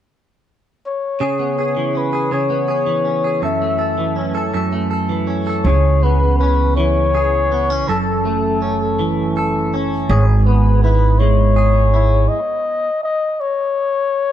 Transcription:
0.86 C#5
1.20 C#3 G#4
1.39 B3
1.59 G#4
1.77 E3
1.95 C#4 B4
2.13 G#4
2.31 C#3 G#4 C#5
2.50 B3
2.68 G#4
2.86 E3
3.05 C#4
3.24 G#4
3.42 F#2 A4 E5
3.62 A3
3.79 A4
3.98 E3
4.16 C#4
4.35 A4
4.54 F#2 A4
4.73 A3
4.91 A4
5.09 E3
5.27 C#4
5.47 A4
5.64 C#2 C#3 G#4 C#5
6.03 B3 B4
6.38 C#4 B4
6.76 E3 C#5
7.15 G#4
7.52 B3
7.70 C#4
7.88 F#1 F#2 A4
8.25 A3
8.62 C#4
8.99 E3
9.37 A4
9.74 C#4
10.09 G#1 G#2 G#4 C#5
10.46 B3 B4
10.83 E4 B4
11.19 G#3 C#5
11.56 G#4
11.94 E4
12.29 D#5
13.04 D#5
13.40 C#5

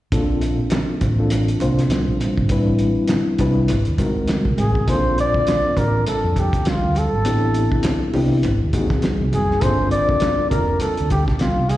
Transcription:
0.12 A#1 A#3 C4 D4 F4 A4, kick, closed hi-hat
0.41 closed hi-hat
0.70 snare, closed hi-hat, high conga
1.01 A1, kick, closed hi-hat, muted conga
1.19 A#3 C4 D4 F4 A4
1.30 closed hi-hat, muted conga
1.48 closed hi-hat
1.60 C2 A#3 C4 D4 F4 C5, closed hi-hat, muted conga
1.79 snare, closed hi-hat
1.90 muted fingered electric bass stroke, snare, closed hi-hat, high conga
2.08 A#1
2.20 closed hi-hat, high conga
2.38 G#1, kick
2.49 A1 G3 C4 D4 E4 B4, kick, closed hi-hat
2.79 closed hi-hat
3.08 snare, closed hi-hat, high conga
3.39 C2 G3 C4 D4 E4 B4, kick, closed hi-hat, muted conga, low conga
3.68 G#1, closed hi-hat, muted conga
3.85 D#2, closed hi-hat
3.98 G#3 C4 D#4 F#4 A#4, kick, closed hi-hat, muted conga
4.28 snare, closed hi-hat, high conga
4.45 C2, kick
4.58 A1 G#4, closed hi-hat, high conga
4.75 kick
4.88 A#1 A#3 C4 D4 F4 A4 C5, kick, closed hi-hat
5.18 D5, closed hi-hat, muted conga
5.34 A#3 C4 D4 F4 A4, kick
5.47 snare, closed hi-hat, high conga
5.77 A1 A#4, kick, closed hi-hat, muted conga, low conga
6.07 A4, closed hi-hat, muted conga
6.24 F2
6.36 G4, kick, closed hi-hat, muted conga
6.53 kick, closed hi-hat
6.65 F4, muted fingered electric bass stroke, snare, closed hi-hat, high conga
6.83 D2
6.95 A4, closed hi-hat, high conga
7.13 G#1
7.25 A1 B3 C4 D4 E4 G4, closed hi-hat
7.54 closed hi-hat
7.72 kick
7.83 snare, closed hi-hat, high conga
8.14 C2 B3 C4 D4 E4 G4, open hi-hat, muted conga, low conga
8.43 G#1, closed hi-hat, muted conga
8.62 D#2
8.73 A#3 C4 D#4 F#4 G#4, kick, closed hi-hat, muted conga
8.90 kick, snare
9.02 snare, closed hi-hat, high conga
9.21 C2
9.33 F#1 G#4, closed hi-hat, high conga
9.51 snare
9.61 G1 A#3 C4 D4 F4 A4 C5, kick, closed hi-hat
9.91 D5, closed hi-hat, muted conga
10.09 A#3 C4 D4 F4 A4, kick
10.20 snare, closed hi-hat, high conga
10.50 F1 A#4, kick, closed hi-hat, muted conga, low conga
10.80 A4, muted fingered electric bass stroke, closed hi-hat, muted conga
10.97 D2, closed hi-hat
11.10 G4, kick, closed hi-hat, muted conga
11.28 kick, snare
11.39 F4, muted fingered electric bass stroke, snare, closed hi-hat, high conga
11.59 C2
11.69 G#4, closed hi-hat, high conga

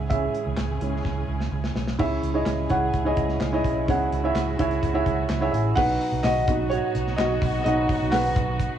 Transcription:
Already playing: C#2 C#3 C#4 E4 G#4 E5
0.10 E3 G#3 C#4 G#4 E5, kick, closed hi-hat
0.35 closed hi-hat
0.46 C#2
0.57 C#2, snare, clap, closed hi-hat
0.81 C#2 E3 G#3 C#4, closed hi-hat
1.05 C#2, kick, snare
1.28 C#2
1.41 snare
1.52 C#2
1.64 snare
1.75 B1, snare
1.88 snare
1.99 C#2 C#3 C#4 E4 G#4 C#5 E5, kick, crash
2.22 C#2, closed hi-hat
2.34 E4 G#4 C#5 D#5
2.46 C#2, snare, clap, closed hi-hat
2.69 C#2 E4 G#4 C#5 F#5, kick, closed hi-hat
2.94 C#2, kick, closed hi-hat
3.05 E4 G#4 C#5 D#5
3.17 C#2, kick, closed hi-hat
3.29 snare
3.40 C#2, snare, clap, closed hi-hat
3.53 E4 G#4 C#5 D#5
3.64 B1, kick, closed hi-hat
3.88 C#2 C#3 E4 F#4 G#4 C#5 F#5, kick, closed hi-hat
4.12 C#2, closed hi-hat
4.24 E4 G#4 C#5 E5
4.35 C#2, snare, clap, closed hi-hat
4.59 C#2 E4 G#4 C#5 E5, kick, closed hi-hat
4.71 closed hi-hat
4.83 C#2, kick, closed hi-hat
4.94 E4 G#4 C#5 E5
5.06 C#2, kick, closed hi-hat
5.29 C#2, snare, clap, closed hi-hat
5.41 E4 G#4 C#5 E5
5.51 A1 G#4 E5, closed hi-hat
5.75 B1 F#3 B3 D#4 F#4 B4 F#5, kick, crash
6.01 hi-hat pedal, open hi-hat
6.12 B1
6.23 B1 F#4 D#5, snare, clap, hi-hat pedal, open hi-hat
6.47 B1 F#3 B3 D#4, kick, hi-hat pedal, open hi-hat
6.70 F#4 C#5, hi-hat pedal, open hi-hat
6.95 B1, hi-hat pedal, open hi-hat
7.07 snare
7.16 B1 F#4 D#5, snare, clap, hi-hat pedal, open hi-hat
7.42 B1, kick, hi-hat pedal, open hi-hat
7.64 B1 F#3 B3 D#4 F#4 D#5, hi-hat pedal, open hi-hat
7.89 kick, hi-hat pedal, open hi-hat
8.01 B1
8.11 B1 B4 F#5, snare, clap, hi-hat pedal, open hi-hat
8.36 B1, kick, hi-hat pedal, open hi-hat
8.60 kick, hi-hat pedal, open hi-hat

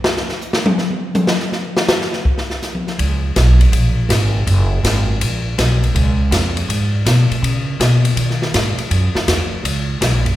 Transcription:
0.04 snare
0.17 snare
0.29 snare
0.41 hi-hat pedal
0.53 snare
0.66 high tom
0.78 snare
0.90 high tom
1.15 hi-hat pedal, high tom
1.27 snare
1.40 snare
1.52 snare
1.77 snare
1.88 snare, hi-hat pedal
2.01 snare
2.13 snare
2.25 kick
2.38 snare
2.50 snare
2.62 snare, hi-hat pedal
2.75 high tom
2.87 snare
2.99 C#2, ride
3.36 B1, snare, hi-hat pedal, ride
3.61 ride
3.72 A#1, ride
4.09 G#1, snare, hi-hat pedal, ride
4.47 F#1, ride
4.83 G#1, snare, hi-hat pedal, ride
5.21 A#1, ride
5.58 B1, snare, hi-hat pedal, ride
5.83 ride
5.95 C#2, ride
6.31 F2, snare, hi-hat pedal, ride
6.57 ride
6.68 G#2, ride
7.05 B2, snare, hi-hat pedal, ride
7.31 muted upright bass stroke, ride
7.42 C#3, ride
7.80 B2, snare, hi-hat pedal, ride
8.05 ride
8.16 D#3, ride
8.30 snare
8.42 snare
8.54 G#2, snare, hi-hat pedal, ride
8.78 muted upright bass stroke, ride
8.90 F#2, ride
9.15 muted upright bass stroke, snare
9.27 E2, snare, hi-hat pedal, ride
9.51 muted upright bass stroke
9.64 C#2, ride
10.01 B1, snare, hi-hat pedal, ride
10.12 A#1
10.25 F#1, ride

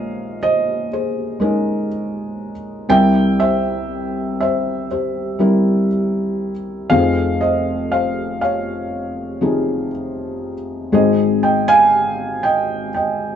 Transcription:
Already playing: A#1 A#2 G#3 C#4 D#4 A#4 C5 C#5 D#5 F5
0.43 C5 D#5
0.93 G#4 C5
1.40 G#3 C#4 D#4 A#4
2.89 C2 C3 G3 C4 E4 A#4 E5 G5
3.40 C5 E5
4.40 C5 E5
4.91 G4 C5
5.39 G3 C4 E4 A#4
6.90 F1 F2 F3 C4 D#4 G#4 C5 F5
7.41 C5 D#5
7.92 C5 F5
8.41 C#5 F5
9.41 C3 F3 D#4 G#4
10.92 G#1 G#2 G#3 C4 D#4 G#4 C5 D#5
11.43 D#5 G5
11.68 F5 G#5
12.43 D#5 G5
12.94 D#5 G5

